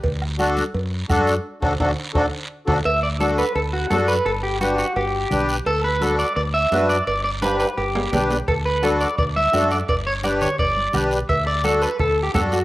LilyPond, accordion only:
\new Staff \with { instrumentName = "Accordion" } { \time 4/4 \key d \major \tempo 4 = 171 r4 <d' fis' a'>8 r4. <d' fis' a'>8 r8 | r8 <d' fis' a'>8 <d' fis' a'>8 r8 <d' fis' a'>8 r4 <d' fis' a'>8 | r4 <d' fis' a'>8 r4. <d' fis' a'>8 r8 | r4 <d' g' b'>8 r4. <d' g' b'>8 r8 |
r4 <d' fis' a'>8 r4. <d' fis' b'>8 r8 | r4 <d' g' b'>8 r4. <d' g' b'>8 r8 | r4 <d' fis' a'>8 r4. <d' fis' a'>8 r8 | r4 <d' g' b'>8 r4. <d' g' b'>8 r8 |
r4 <d' fis' a'>8 r4. <d' fis' a'>8 r8 | }